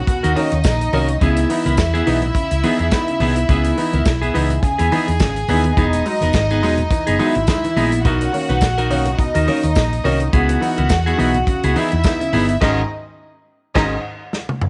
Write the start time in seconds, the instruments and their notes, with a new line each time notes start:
Already playing: string section F#4 F#5
0.07 grand piano B2, muted clean electric guitar stroke, kick, closed hi-hat
0.23 fingered electric bass D#2, clean electric guitar D#4 F#4 A#4, closed hi-hat, muted conga
0.35 grand piano D#3 A#3 C#4, clean electric guitar D#4 F#4 A#4, string section D#4 D#5, open hi-hat, high conga
0.52 fingered electric bass D#2, grand piano A#3 C#4, muted clean electric guitar stroke, closed hi-hat
0.64 fingered electric bass A#1, muted clean electric guitar stroke, kick, snare, closed hi-hat, tambourine, muted conga, high conga
0.81 muted clean electric guitar stroke, closed hi-hat, muted conga
0.93 fingered electric bass C2, grand piano D#3 A#3 C#4, clean electric guitar D#4 F#4 A#4, open hi-hat, high conga, low conga
1.08 muted clean electric guitar stroke, closed hi-hat
1.21 fingered electric bass C#2, grand piano C#3, clean electric guitar B3 E4 G#4, string section E4 E5, kick, closed hi-hat, muted conga, low conga
1.36 grand piano B3 D#4, closed hi-hat, muted conga
1.49 grand piano E3 B3 D#4, muted clean electric guitar stroke, open hi-hat
1.66 fingered electric bass C#2, clean electric guitar B3 E4 A#4, closed hi-hat, high conga
1.77 fingered electric bass E2, kick, snare, closed hi-hat, tambourine, muted conga
1.94 clean electric guitar B3 E4 G#4, closed hi-hat, muted conga
2.06 fingered electric bass B1, grand piano E3 B3 D#4, clean electric guitar B3 E4 G#4, open hi-hat
2.22 muted clean electric guitar stroke, closed hi-hat, low conga
2.35 grand piano C#3, muted clean electric guitar stroke, kick, closed hi-hat
2.51 fingered electric bass C#2, muted clean electric guitar stroke, closed hi-hat, muted conga
2.63 grand piano E3 B3 D#4, clean electric guitar B3 E4 G#4, open hi-hat, high conga
2.79 fingered electric bass E2, clean electric guitar B3 E4 G#4, grand piano B3 D#4, closed hi-hat
2.91 grand piano B3 D#4, muted clean electric guitar stroke, kick, snare, closed hi-hat, tambourine, muted conga, high conga
3.08 grand piano C#3, muted clean electric guitar stroke, closed hi-hat
3.20 fingered electric bass C2, clean electric guitar B3 E4 G#4, grand piano B3 D#4, open hi-hat, high conga, low conga
3.36 muted clean electric guitar stroke, closed hi-hat
3.49 fingered electric bass C#2, grand piano C#3, clean electric guitar B3 E4 G#4, kick, closed hi-hat, low conga
3.64 grand piano B3 D#4, closed hi-hat, muted conga
3.77 grand piano E3 B3 D#4, muted clean electric guitar stroke, open hi-hat
3.93 fingered electric bass C#2, clean electric guitar B3 E4 A#4, closed hi-hat, high conga
4.05 fingered electric bass B1, muted clean electric guitar stroke, kick, snare, closed hi-hat, tambourine
4.22 clean electric guitar B3 E4 G#4, closed hi-hat, muted conga
4.34 fingered electric bass C#2, grand piano E3 B3 D#4, clean electric guitar B3 E4 G#4, open hi-hat
4.50 muted clean electric guitar stroke, closed hi-hat, low conga
4.63 grand piano C#3, string section G#4 G#5, muted clean electric guitar stroke, kick, closed hi-hat
4.79 fingered electric bass E2, clean electric guitar B3 E4 G#4, closed hi-hat, muted conga
4.92 grand piano E3 B3 D#4, clean electric guitar B3 E4 G#4, open hi-hat, high conga
5.08 fingered electric bass E2, grand piano B3 D#4, muted clean electric guitar stroke, closed hi-hat
5.20 fingered electric bass G#1, grand piano C#3, muted clean electric guitar stroke, kick, snare, closed hi-hat, tambourine, muted conga, high conga
5.36 muted clean electric guitar stroke, closed hi-hat
5.48 fingered electric bass D#2, grand piano E3 B3 D#4, clean electric guitar B3 E4 G#4, open hi-hat, high conga, low conga
5.64 grand piano B3 D#4, muted clean electric guitar stroke, closed hi-hat
5.77 fingered electric bass E1, grand piano E3, clean electric guitar B3 D#4 G#4, string section D#4 D#5, kick, closed hi-hat, low conga
5.93 grand piano G#3 D#4, closed hi-hat, muted conga
6.05 grand piano F#3 G#3 D#4, muted clean electric guitar stroke, open hi-hat
6.21 fingered electric bass E1, clean electric guitar B3 D#4 A#4, closed hi-hat, high conga
6.33 fingered electric bass G#1, muted clean electric guitar stroke, kick, snare, closed hi-hat, tambourine
6.50 clean electric guitar B3 D#4 G#4, closed hi-hat, muted conga
6.63 fingered electric bass E1, grand piano F#3 G#3 D#4, clean electric guitar B3 D#4 G#4, open hi-hat
6.78 muted clean electric guitar stroke, closed hi-hat, low conga
6.91 grand piano E3, muted clean electric guitar stroke, kick, closed hi-hat
7.07 fingered electric bass F#1, clean electric guitar B3 D#4 G#4, closed hi-hat, muted conga
7.19 grand piano F#3 G#3 D#4, clean electric guitar B3 D#4 G#4, string section E4 E5, open hi-hat, high conga
7.35 fingered electric bass G#1, grand piano G#3 D#4, muted clean electric guitar stroke, closed hi-hat
7.47 grand piano G#3 D#4, muted clean electric guitar stroke, kick, snare, closed hi-hat, tambourine, muted conga, high conga
7.64 grand piano E3, muted clean electric guitar stroke, closed hi-hat, muted conga
7.76 fingered electric bass A#1, grand piano G#3 D#4, clean electric guitar B3 D#4 G#4, open hi-hat, high conga, low conga
7.92 muted clean electric guitar stroke, closed hi-hat
8.05 fingered electric bass B1, grand piano B2, clean electric guitar D#4 F#4 A#4, string section F#4 F#5, kick, closed hi-hat, low conga
8.21 grand piano A#3 C#4, closed hi-hat
8.33 grand piano D#3 A#3 C#4, muted clean electric guitar stroke, open hi-hat
8.49 fingered electric bass B1, clean electric guitar D#4 F#4 B4, closed hi-hat, high conga
8.61 fingered electric bass A#1, muted clean electric guitar stroke, kick, snare, closed hi-hat, tambourine, muted conga
8.78 clean electric guitar D#4 F#4 A#4, closed hi-hat, muted conga
8.90 fingered electric bass B1, grand piano D#3 A#3 C#4, clean electric guitar D#4 F#4 A#4, open hi-hat
9.05 muted clean electric guitar stroke, closed hi-hat, low conga
9.18 grand piano B2, string section D#4 D#5, muted clean electric guitar stroke, kick, closed hi-hat
9.35 fingered electric bass D#2, clean electric guitar D#4 F#4 A#4, closed hi-hat
9.47 grand piano D#3 A#3 C#4, clean electric guitar D#4 F#4 A#4, open hi-hat, high conga
9.63 fingered electric bass D#2, grand piano A#3 C#4, muted clean electric guitar stroke, closed hi-hat
9.75 fingered electric bass A#1, muted clean electric guitar stroke, kick, snare, closed hi-hat, tambourine, muted conga, high conga
9.92 muted clean electric guitar stroke, closed hi-hat
10.04 fingered electric bass C2, grand piano D#3 A#3 C#4, clean electric guitar D#4 F#4 A#4, open hi-hat, high conga, low conga
10.20 muted clean electric guitar stroke, closed hi-hat
10.33 fingered electric bass C#2, grand piano C#3, clean electric guitar B3 E4 G#4, string section F#4 F#5, kick, closed hi-hat, muted conga, low conga
10.49 grand piano B3 D#4, closed hi-hat, muted conga
10.61 grand piano E3 B3 D#4, muted clean electric guitar stroke, open hi-hat
10.78 fingered electric bass C#2, clean electric guitar B3 E4 A#4, closed hi-hat, high conga
10.89 fingered electric bass E2, muted clean electric guitar stroke, kick, snare, closed hi-hat, tambourine, muted conga
11.06 clean electric guitar B3 E4 G#4, closed hi-hat
11.18 fingered electric bass B1, grand piano E3 B3 D#4, clean electric guitar B3 E4 G#4, open hi-hat
11.34 muted clean electric guitar stroke, closed hi-hat, low conga
11.47 grand piano C#3, muted clean electric guitar stroke, kick, closed hi-hat, muted conga
11.63 fingered electric bass C#2, clean electric guitar B3 E4 G#4, closed hi-hat, muted conga
11.75 grand piano E3 B3 D#4, clean electric guitar B3 E4 G#4, string section E4 E5, open hi-hat, high conga
11.92 fingered electric bass E2, grand piano B3 D#4, muted clean electric guitar stroke, closed hi-hat
12.04 grand piano B3 D#4, kick, snare, closed hi-hat, tambourine, muted conga, high conga
12.21 grand piano C#3, muted clean electric guitar stroke, closed hi-hat, muted conga
12.33 fingered electric bass G1, grand piano B3 D#4, clean electric guitar B3 E4 G#4, open hi-hat, high conga, low conga
12.49 muted clean electric guitar stroke, closed hi-hat
12.61 fingered electric bass G#1, grand piano G#2 D#3, clean electric guitar C#4 F#4 G#4, string section D#4 D#5, kick, snare, crash
13.75 fingered electric bass G#1, grand piano G#2 D#3, clean electric guitar C#4 F#4 G#4, string section D#4 D#5, kick, snare, crash
14.33 snare
14.49 high tom
14.61 mid tom